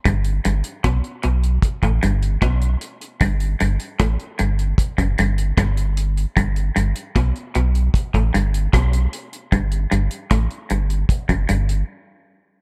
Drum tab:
HH |xxxxxxxxxxxxxxxx|xxxxxxxxxxxxxxxx|xxxxxxxxxxxxxxxx|xxxxxxxxxxxx----|
SD |----r-------r---|----r-------r---|----r-------r---|----r-----------|
BD |o---o---oo--o---|o---o---oo--o---|o---o---oo--o---|o---o---oo------|